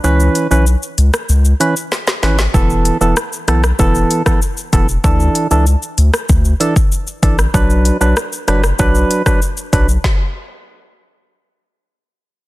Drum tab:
HH |--x---x---x---x-|--x---x---x---x-|--x---x---x---x-|--x---x---x---x-|
SH |xxxxxxxxxxxxxxxx|xxxxxxxxxxxxxxxx|xxxxxxxxxxxxxxxx|xxxxxxxxxxxxxxxx|
SD |-------r----oooo|----r-rr---r----|-------r-------r|----r-rr---r----|
BD |----------------|o-------o--o--o-|o-------o--o--o-|o-------o--o--o-|

HH |----------------|
SH |----------------|
SD |o---------------|
BD |o---------------|